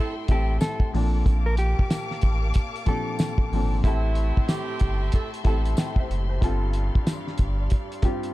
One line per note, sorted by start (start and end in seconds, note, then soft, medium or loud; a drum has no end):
0.00 0.28 A2 medium
0.00 0.29 G3 medium
0.00 0.14 C4 medium
0.00 0.30 C4 medium
0.00 0.14 E4 loud
0.00 0.25 E4 medium
0.00 0.30 E4 medium
0.00 0.14 A4 loud
0.00 0.31 A4 medium
0.00 0.92 A4 medium
0.00 0.92 E5 medium
0.00 0.92 G5 medium
0.00 0.92 C6 medium
0.28 0.59 A1 loud
0.28 0.79 A2 medium
0.28 0.79 G3 medium
0.28 0.80 C4 medium
0.28 0.56 C4 medium
0.28 0.80 E4 medium
0.28 0.56 E4 medium
0.28 0.59 G4 medium
0.28 0.56 A4 medium
0.28 0.80 A4 medium
0.28 kick loud
0.28 closed hi-hat medium
0.61 0.90 A4 medium
0.61 snare loud
0.61 closed hi-hat medium
0.61 tambourine medium
0.80 kick loud
0.93 1.23 A#1 loud
0.93 1.98 A#2 medium
0.93 1.99 F3 medium
0.93 3.82 A#3 medium
0.93 1.99 C4 medium
0.93 1.99 D4 medium
0.93 2.00 A4 medium
0.93 3.82 F5 medium
0.93 3.82 A5 medium
0.93 3.82 D6 loud
0.93 open hi-hat medium
1.26 1.74 A#1 loud
1.26 kick loud
1.26 closed hi-hat loud
1.46 1.57 A#4 medium
1.57 2.83 G4 medium
1.57 closed hi-hat medium
1.79 kick loud
1.90 snare loud
1.90 closed hi-hat loud
1.90 tambourine medium
2.11 snare soft
2.21 2.53 A1 medium
2.21 kick medium
2.21 closed hi-hat medium
2.54 kick medium
2.54 closed hi-hat loud
2.76 closed hi-hat medium
2.86 3.37 A#2 medium
2.86 3.37 F3 medium
2.86 3.37 C4 medium
2.86 3.38 D4 medium
2.86 3.38 G4 medium
2.86 3.81 A4 medium
2.86 kick loud
2.86 closed hi-hat medium
3.19 snare loud
3.19 closed hi-hat medium
3.19 tambourine medium
3.38 kick loud
3.52 3.81 G#1 medium
3.52 3.78 A#2 medium
3.52 3.78 F3 medium
3.52 3.78 C4 medium
3.52 3.79 D4 medium
3.52 3.79 A4 medium
3.52 open hi-hat medium
3.84 4.33 A1 loud
3.84 4.78 A2 medium
3.84 4.79 G3 medium
3.84 4.45 A3 loud
3.84 4.45 C4 loud
3.84 4.79 C4 medium
3.84 4.45 E4 loud
3.84 4.79 E4 medium
3.84 8.34 G4 medium
3.84 4.80 A4 medium
3.84 6.40 E5 medium
3.84 6.40 A5 medium
3.84 8.34 C6 medium
3.84 kick loud
3.84 closed hi-hat loud
4.15 closed hi-hat medium
4.37 kick loud
4.48 5.09 C4 loud
4.48 5.09 E4 loud
4.48 5.09 G4 loud
4.48 snare loud
4.48 closed hi-hat loud
4.48 tambourine medium
4.79 5.11 G1 medium
4.79 kick medium
4.79 closed hi-hat medium
5.12 5.30 C4 medium
5.12 5.30 E4 medium
5.12 5.30 A4 loud
5.12 kick medium
5.12 closed hi-hat loud
5.34 closed hi-hat medium
5.44 5.75 A1 medium
5.44 5.95 A2 medium
5.44 5.95 G3 medium
5.44 5.95 C4 medium
5.44 5.72 C4 medium
5.44 5.96 E4 medium
5.44 5.72 E4 medium
5.44 5.72 A4 medium
5.44 5.78 A4 loud
5.44 kick loud
5.44 closed hi-hat medium
5.65 closed hi-hat medium
5.77 5.98 E5 medium
5.77 5.98 G5 medium
5.77 snare loud
5.77 closed hi-hat loud
5.77 tambourine medium
5.96 6.28 C5 medium
5.96 6.29 E5 medium
5.96 kick loud
6.10 6.40 F#1 medium
6.10 closed hi-hat medium
6.29 6.42 A4 medium
6.29 6.60 C5 medium
6.41 6.91 G1 loud
6.41 7.36 G2 medium
6.41 7.36 G3 medium
6.41 7.36 C4 medium
6.41 7.37 F4 medium
6.41 7.37 A4 loud
6.41 8.34 D5 medium
6.41 8.34 F5 medium
6.41 kick loud
6.41 closed hi-hat loud
6.73 closed hi-hat medium
6.95 kick loud
7.07 snare loud
7.07 closed hi-hat loud
7.07 tambourine medium
7.27 snare soft
7.38 7.69 G1 loud
7.38 kick medium
7.38 closed hi-hat medium
7.70 kick medium
7.70 closed hi-hat loud
7.92 closed hi-hat medium
8.02 8.34 G2 medium
8.02 8.34 G3 medium
8.02 8.34 C4 medium
8.02 8.34 F4 medium
8.02 8.34 G4 loud
8.02 kick loud
8.02 closed hi-hat medium
8.23 closed hi-hat medium